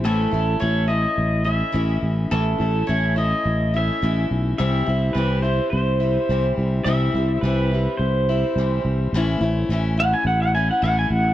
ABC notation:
X:1
M:4/4
L:1/16
Q:1/4=106
K:Alyd
V:1 name="Pedal steel guitar"
A4 c2 d4 e4 z2 | A4 c2 d4 e4 z2 | e4 B2 =c2 c6 z2 | e4 B4 =c6 z2 |
z6 f g f f g f f g f2 |]
V:2 name="Steel-string acoustic guitar"
[A,,E,A,CE]2 [A,CE]2 [E,A,CE]2 [A,CE]4 [A,CE]2 [E,A,CE]4 | [A,,E,A,CE]2 [A,CE]2 [E,A,CE]2 [A,CE]4 [A,CE]2 [E,A,CE]4 | [=C,E,=G,=CE]2 [G,CE]2 [E,G,CE]2 [G,CE]4 [G,CE]2 [E,G,CE]4 | [=C,E,=G,=CE]2 [G,CE]2 [E,G,CE]2 [G,CE]4 [G,CE]2 [E,G,CE]4 |
[A,,E,A,CE]2 [A,CE]2 [E,A,CE]2 [A,CE]4 [A,CE]2 [E,A,CE]4 |]
V:3 name="Fretless electric bass" clef=bass
A,,,2 A,,,2 A,,,4 A,,,4 A,,,2 A,,,2 | A,,,2 A,,,2 A,,,4 A,,,4 A,,,2 B,,,2 | =C,,2 C,,2 C,,4 C,,4 C,,2 C,,2 | =C,,2 C,,2 C,,4 C,,4 C,,2 C,,2 |
A,,,2 A,,,2 A,,,4 A,,,4 A,,,2 A,,,2 |]